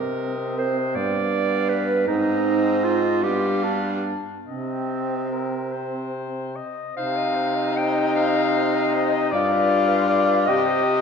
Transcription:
Already playing: C3 C4 A#4 D#5
0.59 C5
0.95 G2 B3 D5 F5
1.69 B4
2.07 G#2 C4 D#4 D#5
2.84 F4
3.22 G2 B3 G4 F5
3.64 D4
4.47 C3 C4 D#5
5.31 A#4
5.72 C5
6.56 D#5
6.96 C3 D#4 C5 F5
7.17 D#5
7.36 C5
7.56 D#5
7.76 C5 G5
7.96 D#5
8.15 C5 F5
8.36 D#5
8.56 C5
8.76 D#5
8.94 C5 D#5
9.13 D#5
9.32 G2 F4 D5
9.52 B4
9.70 D5
9.89 B4
10.09 D5
10.28 B4
10.46 C3 G4 D#5
10.67 C5
10.84 D#5

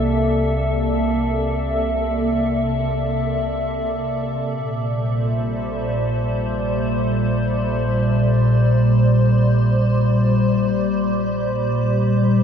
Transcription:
Already playing: C2 C3 A#3 A4 D5 E5
4.49 A#1 A#2
4.79 G3
4.90 C5

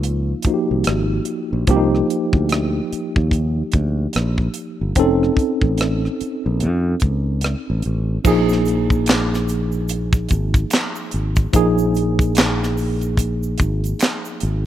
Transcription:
Already playing: C#2 F3 A#3 D#4 F4
0.03 closed hi-hat
0.42 F3 A#3, muted fingered electric bass stroke, kick, closed hi-hat
0.47 D#4 F#4
0.54 G4
0.71 C2
0.84 G#1, cross-stick, closed hi-hat
1.25 closed hi-hat
1.53 A#1
1.67 C2 F3 A#3 D4 G4, kick, closed hi-hat
1.76 D#4
1.95 cross-stick
2.10 closed hi-hat
2.33 D2, kick
2.49 cross-stick, closed hi-hat
2.93 muted fingered electric bass stroke, closed hi-hat
3.16 D#2, kick
3.31 kick, closed hi-hat
3.72 D2, kick, closed hi-hat
4.13 A#1, cross-stick, closed hi-hat
4.38 kick
4.54 closed hi-hat
4.81 G1
4.95 F1 C4 C#4 D#4 A4, kick, closed hi-hat
5.23 cross-stick
5.37 kick, closed hi-hat
5.62 A1, kick
5.78 cross-stick, closed hi-hat
6.05 cross-stick
6.21 muted fingered electric bass stroke, closed hi-hat
6.46 A#1
6.60 F2, closed hi-hat
7.00 C#2, kick, closed hi-hat
7.41 cross-stick, closed hi-hat
7.70 A1
7.82 A1, closed hi-hat
8.24 A#1 F3 A#3 D#4 G#4, kick, crash, shaker
8.49 snare, shaker
8.65 closed hi-hat, shaker
8.90 kick, shaker
9.06 finger snap, snare, clap, closed hi-hat, shaker
9.34 snare, shaker
9.48 closed hi-hat, shaker
9.72 shaker
9.88 closed hi-hat, shaker
10.13 kick, shaker
10.29 G#1, kick, closed hi-hat, shaker
10.54 kick, closed hi-hat, shaker
10.70 finger snap, snare, clap, closed hi-hat, shaker
10.96 shaker
11.11 G#1, closed hi-hat
11.36 kick, closed hi-hat, shaker
11.53 A#1 F3 A#3 D#4 G#4, kick, closed hi-hat, shaker
11.78 shaker
11.95 closed hi-hat, shaker
12.19 kick, closed hi-hat, shaker
12.35 finger snap, snare, clap, closed hi-hat, shaker
12.63 snare, shaker
12.77 open hi-hat, shaker
13.01 closed hi-hat, shaker
13.17 kick, closed hi-hat, shaker
13.43 shaker
13.58 G#1, kick, closed hi-hat, shaker
13.84 closed hi-hat, shaker
13.99 finger snap, snare, clap, closed hi-hat, shaker
14.25 shaker
14.40 G#1, closed hi-hat

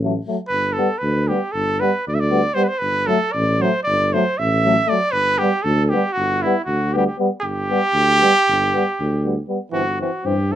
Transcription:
Already playing: A1
0.04 F#3 A3
0.27 F#3 A3
0.48 G1 B4
0.73 A4
0.78 G3 B3
0.98 B4
1.03 D2
1.28 G3 B3 G4
1.52 G1 A4
1.80 G3 B3 B4
2.07 D2 D5
2.15 E5
2.20 D5
2.31 G3 B3
2.54 G3 B3 C5
2.64 B4
2.68 C5
2.79 G1 B4
3.07 F#3 A3 A4
3.32 A1 D5
3.60 F#3 A3 C5
3.83 G1 D5
4.13 F#3 A3 C5
4.38 A1 E5
4.65 F#3 A3
4.86 A3 D5
4.91 F#3
5.12 G1 B4
5.38 G3 B3 G4
5.64 D2 A4
5.85 G4 A4
5.92 G3 B3
6.13 G1 F#4
6.42 G3 B3 E4
6.65 D2 F#4
6.93 G3 B3 G4
7.06 G4
7.18 G3 B3
7.42 G1 G4
7.70 G3 B3
7.93 D2
8.21 G3 B3
8.47 G1
8.74 G3 B3
8.99 D2
9.24 G3 B3
9.48 G3 B3
9.71 G1 E3 C4 F#4
10.00 E3 C4 F#4
10.24 G2 E3 C4 G4
10.50 E3 C4 A4

